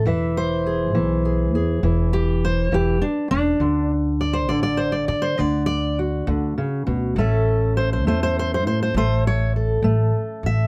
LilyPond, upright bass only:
\new Staff \with { instrumentName = "Upright bass" } { \clef bass \time 12/8 \key d \major \tempo 4. = 68 e,,4. b,,4 e,8 e,,4. e,,8 r8 e,,8 | d,4. a,,4 d8 d,4. d,8 r8 d,8 | a,,4. e,4 a,8 a,,4. a,,8 r8 a,,8 | }